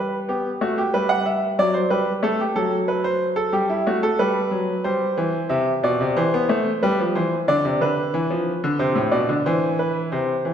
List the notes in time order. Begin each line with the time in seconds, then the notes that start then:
Already playing: G3 B4
0.28 B3 G4
0.61 A3 F#4
0.78 G4
0.94 G3 B4
1.09 F#5
1.26 E5
1.59 F#3 D5
1.74 C5
1.90 G3 B4
2.23 A3 A4
2.40 G4
2.56 F#3 A4
2.88 B4
3.04 C5
3.36 A4
3.53 G3 G4
3.70 E4
3.87 A3 F#4
4.03 A4
4.19 G3 B4
4.51 F#3
4.84 G3 C5
5.17 E3
5.49 C3 E5
5.83 B2 D5
6.01 C3
6.16 E3 C5
6.34 B3
6.49 A3
6.83 G3 B4
7.00 F3
7.15 E3 C5
7.48 D3 D5
7.65 C3
7.81 D3 B4
8.14 E3
8.30 F3
8.64 D3
8.79 C3 C5
8.95 A2
9.12 B2 D5
9.29 D3
9.46 E3 C5
9.79 B4
10.12 C3 C5
10.45 E3